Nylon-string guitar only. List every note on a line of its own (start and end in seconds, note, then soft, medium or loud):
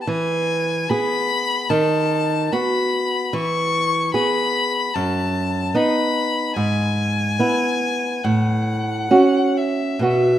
0.07 0.87 E3 medium
0.90 1.67 B3 medium
0.90 1.67 G#4 medium
1.70 2.49 D#3 medium
2.52 3.29 B3 medium
2.52 3.29 F#4 medium
3.33 4.12 E3 medium
4.14 4.91 B3 medium
4.14 4.91 G#4 medium
4.96 5.73 F#2 medium
5.74 6.53 B3 medium
5.74 6.53 D#4 medium
6.56 7.37 G#2 medium
7.39 8.20 B3 soft
7.39 8.20 E4 medium
8.24 9.09 A2 medium
9.11 10.00 C#4 soft
9.11 10.00 F#4 medium
9.99 10.39 B2 medium
9.99 10.39 B3 soft
9.99 10.39 F#4 soft